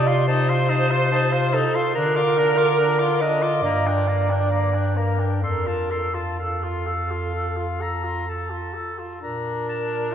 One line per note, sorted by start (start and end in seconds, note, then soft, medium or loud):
0.00 1.65 C3 medium
0.00 0.26 D5 medium
0.07 0.28 F4 medium
0.07 0.28 C6 medium
0.28 0.50 D#4 medium
0.28 1.56 C5 loud
0.28 0.51 A5 medium
0.49 0.71 F4 medium
0.49 0.71 C6 medium
0.69 0.92 D#4 medium
0.69 0.93 A5 medium
0.91 1.11 F4 medium
0.91 1.12 C6 medium
1.12 1.34 D#4 medium
1.12 1.35 A5 medium
1.32 1.55 F4 medium
1.32 1.56 C6 medium
1.54 1.77 D#4 medium
1.54 1.94 A4 medium
1.54 1.77 A5 medium
1.75 1.95 F4 medium
1.75 1.95 C6 medium
1.95 3.64 D3 medium
1.95 2.18 D4 medium
1.95 3.22 A#4 loud
1.95 2.18 A#5 medium
2.16 2.39 F4 medium
2.16 2.40 D6 medium
2.37 2.58 D4 medium
2.37 2.59 A#5 medium
2.57 2.78 F4 medium
2.57 2.78 D6 medium
2.79 3.02 D4 medium
2.79 3.01 A#5 medium
2.99 3.23 F4 medium
2.99 3.23 D6 medium
3.21 3.44 D4 medium
3.21 3.64 D#5 medium
3.21 3.44 A#5 medium
3.42 3.63 F4 medium
3.42 3.63 D6 medium
3.62 5.44 G2 medium
3.62 3.88 A#3 medium
3.62 4.98 D5 medium
3.62 3.88 A#5 medium
3.87 4.09 D4 medium
3.87 4.10 G5 medium
4.07 4.32 A#3 medium
4.07 4.32 A#5 soft
4.30 4.51 D4 soft
4.30 4.51 G5 soft
4.52 4.75 A#3 soft
4.52 4.76 A#5 soft
4.74 4.98 D4 soft
4.74 4.99 G5 soft
4.96 5.21 A#3 soft
4.96 5.30 A#4 medium
4.96 5.21 A#5 soft
5.19 5.42 D4 soft
5.19 5.43 G5 soft
5.43 8.89 F2 medium
5.43 5.68 A4 soft
5.43 6.08 A#4 medium
5.43 5.69 C6 soft
5.66 5.92 F4 soft
5.66 5.93 A5 soft
5.90 6.16 A4 soft
5.90 6.16 C6 soft
6.14 6.39 F4 soft
6.14 6.39 A5 soft
6.39 6.65 A4 soft
6.39 8.72 A4 medium
6.39 7.83 F5 medium
6.64 6.88 F4 soft
6.87 7.13 A4 soft
7.11 7.34 F4 soft
7.35 7.58 A4 soft
7.57 7.82 F4 soft
7.81 8.06 A4 soft
7.81 8.31 A#5 soft
8.04 8.27 F4 soft
8.27 8.52 A4 soft
8.27 9.06 A5 soft
8.51 8.76 F4 soft
8.75 9.00 A4 soft
8.99 9.21 F4 soft
9.21 10.15 A#2 medium
9.21 10.14 D4 soft
9.21 10.15 A#4 medium
9.21 9.65 A#5 soft
9.69 10.15 A5 medium